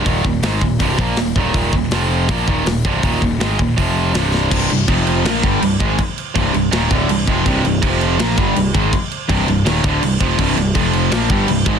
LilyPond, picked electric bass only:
\new Staff \with { instrumentName = "Picked electric bass" } { \clef bass \time 4/4 \key c \minor \tempo 4 = 163 ees,,8 ees,,8 aes,,8 ees,,8 c,,8 bes,,8 ees,,8 ees,,8 | ees,,8 ees,,8 f,,4 bes,,8 ees,,8 ees,,8 c,,8 | ees,,8 ees,,8 aes,,8 ees,,8 f,,4 c,,4 | c,,8 c,,8 f,,4 bes,,8 g,,8 c,,8 aes,,8 |
r4 c,,8 c,,8 ees,,8 d,,8 c,,8 f,,8 | c,,8 c,,8 f,,4 bes,,8 g,,8 c,,8 aes,,8 | r4 c,,8 c,,8 ees,,8 d,,8 c,,8 f,,8 | c,,8 c,,8 f,,4 bes,,8 g,,8 c,,8 aes,,8 | }